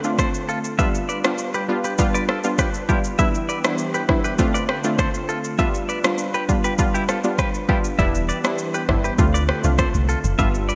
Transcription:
Already playing: analog synth pad D3 A3 C4 F4
0.04 synth pluck A3 C4 D4 F4, shaker
0.19 clean electric guitar A4 C5, kick, cross-stick, shaker
0.34 shaker
0.49 clean electric guitar F4 A4, shaker
0.64 shaker
0.79 synth pluck G3 B3 D4 F4, analog synth pad G3 D4 B4, clean electric guitar B4 E5, kick, shaker
0.95 shaker
1.09 clean electric guitar B4 D5, shaker
1.24 synth pluck G3 B3 D4 F4, cross-stick, shaker
1.38 shaker
1.54 clean electric guitar G4 B4, shaker
1.69 synth pluck G3 B3 D4 F4
1.84 clean electric guitar G4 B4, shaker
1.98 synth pluck G3 B3 D4 F4, kick, shaker
2.14 clean electric guitar B4 D5, shaker
2.29 clean electric guitar F4 A4, cross-stick
2.44 synth pluck G3 B3 D4 F4, shaker
2.58 clean electric guitar G4 B4, kick, cross-stick, shaker
2.74 shaker
2.88 synth pluck G3 B3 D4 F4, clean electric guitar E4 G4, kick, shaker
3.04 shaker
3.19 analog synth pad E3 B3 G4, synth pluck G3 B3 D4 E4, clean electric guitar B4 E5, kick, shaker
3.35 shaker
3.49 clean electric guitar B4 D5, shaker
3.64 synth pluck G3 B3 D4 E4, cross-stick, shaker
3.78 shaker
3.94 clean electric guitar G4 B4, shaker
4.08 synth pluck G3 B3 D4 E4, kick, cross-stick
4.24 clean electric guitar G4 B4, shaker
4.38 analog synth pad D3 A3 C4 F4, synth pluck A3 C4 D4 F4, kick, shaker
4.54 clean electric guitar B4 D5, shaker
4.69 clean electric guitar G4 B4, cross-stick
4.84 synth pluck A3 C4 D4 F4, shaker
4.99 clean electric guitar A4 C5, kick, cross-stick, shaker
5.14 shaker
5.29 clean electric guitar F4 A4, shaker
5.44 shaker
5.58 synth pluck G3 B3 D4 F4, analog synth pad G3 D4 B4, clean electric guitar B4 E5, kick, shaker
5.75 shaker
5.89 clean electric guitar B4 D5, shaker
6.04 synth pluck G3 B3 D4 F4, cross-stick, shaker
6.18 shaker
6.34 clean electric guitar G4 B4, shaker
6.48 synth pluck G3 B3 D4 F4, kick, shaker
6.64 clean electric guitar G4 B4, shaker
6.78 synth pluck G3 B3 D4 F4, kick, shaker
6.94 clean electric guitar E4 G4, shaker
7.09 clean electric guitar F4 A4, cross-stick, shaker
7.24 synth pluck G3 B3 D4 F4, shaker
7.38 clean electric guitar G4 B4, kick, cross-stick, shaker
7.54 shaker
7.68 synth pluck G3 B3 D4 F4, clean electric guitar E4 G4, kick
7.84 shaker
7.98 log drum bass E1, analog synth pad E3 B3 G4, synth pluck G3 B3 D4 E4, clean electric guitar B4 E5, kick, shaker
8.15 shaker
8.29 clean electric guitar B4 D5, shaker
8.44 synth pluck G3 B3 D4 E4, cross-stick, shaker
8.58 shaker
8.74 clean electric guitar G4 B4, shaker
8.88 log drum bass G1, synth pluck G3 B3 D4 E4, kick, cross-stick
9.04 clean electric guitar G4 B4, shaker
9.18 log drum bass D2, analog synth pad D3 A3 C4 F4, synth pluck A3 C4 D4 F4, kick, shaker
9.34 clean electric guitar B4 D5, shaker
9.49 clean electric guitar G4 B4, cross-stick
9.64 log drum bass C2, synth pluck A3 C4 D4 F4, shaker
9.78 clean electric guitar A4 C5, kick, cross-stick, shaker
9.94 log drum bass C2, shaker
10.09 clean electric guitar F4 A4, shaker
10.24 log drum bass F1, shaker
10.38 log drum bass G1, synth pluck G3 B3 D4 F4, analog synth pad G3 D4 B4, clean electric guitar B4 E5, kick, shaker
10.55 shaker
10.69 clean electric guitar B4 D5, shaker

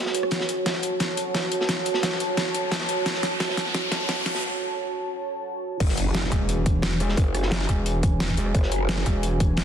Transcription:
Already playing: analog synth pad F#4 C#5 G#5
0.06 snare
0.14 closed hi-hat
0.23 cross-stick
0.31 analog synth pad A5, snare, closed hi-hat, riser
0.40 snare
0.49 closed hi-hat
0.66 snare, closed hi-hat
0.74 snare
0.82 closed hi-hat
1.00 snare, closed hi-hat
1.17 closed hi-hat
1.35 snare, closed hi-hat
1.52 closed hi-hat
1.61 snare
1.69 snare, closed hi-hat
1.85 closed hi-hat
1.94 snare
2.03 snare, closed hi-hat
2.12 snare
2.20 closed hi-hat
2.37 snare, closed hi-hat
2.55 closed hi-hat
2.71 snare, closed hi-hat
2.80 snare
2.89 closed hi-hat
3.06 snare, closed hi-hat
3.14 snare
3.23 snare, closed hi-hat
3.40 snare, closed hi-hat
3.49 snare
3.57 snare, closed hi-hat
3.66 snare
3.75 snare, closed hi-hat
3.91 snare, closed hi-hat
4.00 snare
4.09 snare, closed hi-hat
4.25 snare, closed hi-hat
4.35 snare
5.80 wobble bass F#1, analog synth pad F#4 C#5 G#5, kick, closed hi-hat, crash, impact
5.89 snare
5.97 closed hi-hat
6.14 snare, closed hi-hat
6.23 snare
6.32 wobble bass E1, kick, closed hi-hat
6.49 closed hi-hat
6.66 kick, closed hi-hat
6.82 snare, closed hi-hat
7.00 cross-stick, closed hi-hat
7.09 snare
7.17 wobble bass F#1, kick, closed hi-hat
7.34 cross-stick, closed hi-hat
7.43 snare
7.51 snare, closed hi-hat
7.60 snare
7.69 wobble bass E1, kick, closed hi-hat
7.86 closed hi-hat
8.03 kick, closed hi-hat
8.20 snare, closed hi-hat
8.28 kick, snare
8.37 closed hi-hat
8.46 cross-stick
8.54 wobble bass F#1, kick, closed hi-hat
8.63 snare
8.72 closed hi-hat
8.89 snare, closed hi-hat
8.97 snare
9.06 wobble bass E1, kick, closed hi-hat
9.23 closed hi-hat
9.40 kick, closed hi-hat
9.57 snare, closed hi-hat

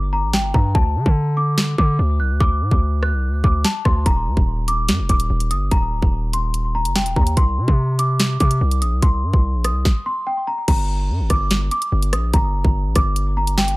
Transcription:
Already playing: 808-style bass G1, celesta D6
0.13 celesta A#5
0.23 808-style bass A1
0.33 celesta G5, snare
0.39 808-style bass G1
0.54 808-style bass G2, celesta A#5, kick
0.75 808-style bass D2, celesta A5, kick
0.96 808-style bass D3
1.06 808-style bass D3, kick
1.37 celesta D6
1.58 snare
1.78 808-style bass D3, celesta D6, kick
1.99 808-style bass D2
2.20 808-style bass C2, celesta F#6
2.30 808-style bass D2
2.40 808-style bass D2, celesta D6, kick
2.61 808-style bass A2
2.71 808-style bass D2, kick
3.03 celesta F#6, cross-stick
3.13 808-style bass C2
3.28 808-style bass D2
3.44 808-style bass D2, celesta D6, kick
3.65 celesta A5, snare
3.85 808-style bass D2, celesta C6, kick, cross-stick
4.06 808-style bass D#1, celesta A#5, kick, closed hi-hat
4.27 808-style bass D#2
4.37 808-style bass D#1, kick
4.68 celesta D6, closed hi-hat
4.88 808-style bass G2, snare, closed hi-hat
4.99 808-style bass D#1
5.09 808-style bass D#1, celesta D6, kick, closed hi-hat
5.20 closed hi-hat
5.30 808-style bass D#1
5.40 closed hi-hat
5.51 808-style bass G1, celesta D#6, closed hi-hat
5.71 808-style bass D#1, celesta A#5, kick, closed hi-hat
5.92 808-style bass D1
6.02 808-style bass D#1, kick
6.33 celesta C6, closed hi-hat
6.54 closed hi-hat
6.75 celesta A#5
6.85 808-style bass F#1, closed hi-hat
6.96 celesta G5, snare
7.01 808-style bass D#1
7.06 closed hi-hat
7.16 808-style bass D#2, celesta A#5, kick
7.27 closed hi-hat
7.37 808-style bass C2, celesta C6, kick, closed hi-hat
7.58 808-style bass C3
7.68 808-style bass C3, kick
7.99 celesta D6, closed hi-hat
8.20 snare, closed hi-hat
8.40 808-style bass C3, celesta D6, kick, closed hi-hat
8.51 closed hi-hat
8.61 808-style bass C2
8.71 closed hi-hat
8.82 808-style bass A#1, celesta D#6, closed hi-hat
8.92 808-style bass C2
9.02 808-style bass C2, celesta C6, kick, closed hi-hat
9.23 808-style bass G2
9.33 808-style bass C2, kick
9.54 808-style bass A#1
9.64 celesta D#6, cross-stick, closed hi-hat
9.70 808-style bass C2
9.85 kick, snare
10.06 celesta C6
10.27 celesta G5
10.47 celesta A#5
10.68 808-style bass G1, celesta A#5, kick, closed hi-hat, crash
11.09 808-style bass G2
11.20 808-style bass G1
11.30 808-style bass G1, celesta D6, kick, cross-stick, closed hi-hat
11.51 snare, closed hi-hat
11.71 celesta D6, closed hi-hat
11.82 closed hi-hat
11.92 808-style bass G1
12.02 closed hi-hat
12.13 808-style bass A#1, celesta D#6, cross-stick, closed hi-hat
12.33 808-style bass G1, celesta A#5, kick, closed hi-hat
12.54 808-style bass F#1
12.64 808-style bass G1, kick
12.85 808-style bass A1
12.96 808-style bass G1, celesta D6, kick, cross-stick, closed hi-hat
13.16 closed hi-hat
13.37 celesta A#5
13.47 closed hi-hat
13.58 celesta G5, snare
13.68 closed hi-hat

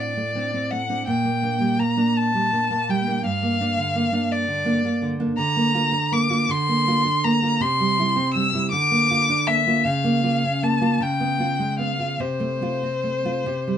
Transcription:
Already playing: nylon-string guitar A2 C4 D4
0.00 violin D5
0.17 nylon-string guitar A3
0.35 nylon-string guitar C4 D4
0.54 nylon-string guitar C4
0.70 nylon-string guitar A3, violin F#5
0.89 nylon-string guitar C4 D4
1.07 nylon-string guitar A#2, violin G5
1.25 nylon-string guitar A#3
1.43 nylon-string guitar A#3 D4
1.60 nylon-string guitar G3
1.79 nylon-string guitar A#3, violin A#5
1.97 nylon-string guitar A#3 D4
2.17 violin A5
2.34 nylon-string guitar G3
2.52 nylon-string guitar A#3 D4
2.71 nylon-string guitar A#3
2.89 nylon-string guitar G3, violin G5
3.07 nylon-string guitar A#3 D4
3.24 nylon-string guitar G2, violin F5
3.43 nylon-string guitar A#3
3.60 nylon-string guitar A#3 D4
3.78 nylon-string guitar D3
3.95 nylon-string guitar A#3
4.12 nylon-string guitar A#3 D4
4.32 violin D5
4.48 nylon-string guitar D3
4.65 nylon-string guitar A#3 D4
4.85 nylon-string guitar A#3
5.02 nylon-string guitar D3
5.20 nylon-string guitar A#3 D4
5.38 nylon-string guitar D3, violin A#5
5.56 nylon-string guitar A#3
5.74 nylon-string guitar A#3 F4
5.92 nylon-string guitar D4
6.12 nylon-string guitar A#3, violin D6
6.29 nylon-string guitar A#3 F4
6.49 nylon-string guitar D3, violin C6
6.69 nylon-string guitar A#3
6.87 nylon-string guitar A#3 F4
7.05 nylon-string guitar D4
7.24 nylon-string guitar A#3, violin A#5
7.42 nylon-string guitar A#3 F4
7.60 nylon-string guitar C3, violin C6
7.80 nylon-string guitar G3
7.99 nylon-string guitar G3 E4
8.16 nylon-string guitar C4
8.34 nylon-string guitar G3, violin E6
8.54 nylon-string guitar G3 E4
8.71 nylon-string guitar D3, violin D6
8.91 nylon-string guitar A#3
9.10 nylon-string guitar A#3 F4
9.29 nylon-string guitar D4
9.47 nylon-string guitar A#3, violin E5
9.67 nylon-string guitar A#3 F4
9.85 nylon-string guitar C#3, violin F5
10.04 nylon-string guitar A#3
10.23 nylon-string guitar A#3 F4
10.44 nylon-string guitar C#4
10.63 nylon-string guitar A#3, violin A5
10.81 nylon-string guitar A#3 F4
11.00 nylon-string guitar C#3, violin G5
11.20 nylon-string guitar B3
11.40 nylon-string guitar B3 F4
11.59 nylon-string guitar G#3
11.79 nylon-string guitar B3, violin F5
11.99 nylon-string guitar B3 F4
12.20 nylon-string guitar C3, violin C5
12.40 nylon-string guitar A3
12.62 nylon-string guitar A3 F4
12.83 nylon-string guitar C4
13.04 nylon-string guitar A3
13.25 nylon-string guitar A3 F4
13.46 nylon-string guitar C3
13.67 nylon-string guitar G3

